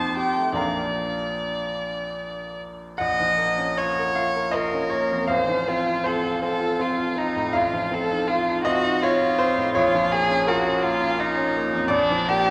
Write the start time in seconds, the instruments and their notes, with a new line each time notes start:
Already playing: grand piano F2 D#4 C5 A5 C6, violin A5
0.17 grand piano G4, violin G5
0.37 grand piano A3
0.53 grand piano A#1 F3 A#3 A#5
0.57 grand piano D4 A#4 F5, violin D5
2.98 grand piano A#1 F#5, violin D#5
3.20 grand piano F3
3.38 grand piano A#3
3.58 grand piano C#4
3.78 grand piano F4, violin C#5
3.99 grand piano A#4
4.15 grand piano F4 F5
4.36 grand piano A#4
4.51 grand piano F4 D#5, violin A#4
4.74 grand piano C#4
4.90 grand piano A#3 C#5
5.11 grand piano F2
5.27 grand piano A1 F5, violin C5
5.48 grand piano F3
5.68 grand piano C4, violin F4
5.87 grand piano F4
6.04 grand piano C4 C5, violin A4
6.23 grand piano F4
6.42 grand piano C4, violin A4
6.60 grand piano F4
6.79 grand piano C4, violin F4
6.97 grand piano F4
7.16 grand piano C4, violin D#4
7.36 grand piano A2
7.53 grand piano A1 F5, violin F4
7.73 grand piano F3
7.91 grand piano C4, violin A4
8.10 grand piano D#4
8.28 violin F4, grand piano F4
8.48 grand piano D#4
8.64 grand piano C4 D#5, violin F#4
8.85 grand piano D#4
9.02 violin F4, grand piano F4 C#5
9.21 grand piano D#4
9.38 grand piano C4 C5
9.57 grand piano A2
9.75 grand piano A#1 C#5, violin F4
9.95 grand piano F3
10.12 grand piano A#3, violin G#4
10.30 grand piano C#4
10.47 grand piano F4 A#4, violin F#4
10.67 grand piano C#4
10.83 grand piano A#3, violin F4
11.00 grand piano C#4
11.18 violin D#4, grand piano F4
11.37 grand piano C#4
11.57 grand piano A#3
11.74 grand piano F2
11.88 grand piano A#1 D5, violin D4
12.10 grand piano F3
12.29 grand piano A#3, violin G4